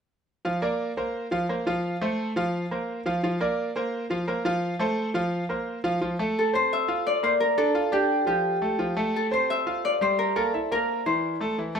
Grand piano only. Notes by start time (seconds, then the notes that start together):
0.45 F3 F4 F5
0.62 A#3 A#4 D5
0.97 A#3 A#4 C5
1.31 F3 F4 F5
1.49 A#3 A#4 C5
1.66 F3 F4 F5
2.01 A3 A4 C5
2.36 F3 F4 F5
2.71 A#3 A#4 C5
3.06 F3 F4 F5
3.23 F3 F4 F5
3.40 A#3 A#4 D5
3.76 A#3 A#4 C5
4.10 F3 F4 F5
4.28 A#3 A#4 C5
4.45 F3 F4 F5
4.79 A3 A4 C5
5.14 F3 F4 F5
5.49 A#3 A#4 C5
5.84 F3 F4 F5
6.01 F3 F4
6.19 A3 A4
6.53 C4 C5
6.88 F4 F5
7.23 A#3 A#4
7.58 D4 D5
7.75 F4 F5
7.92 D4 D5
8.26 F3 F4
8.62 A3 A4
8.79 F3 F4
8.97 A3 A4
9.31 C4 C5
9.66 F4 F5
10.01 G3 G4
10.36 A#3 A#4
10.54 E4 E5
10.71 A#3 A#4
11.06 E3 E4
11.41 A3 A4
11.58 E3 E4
11.75 A3 A4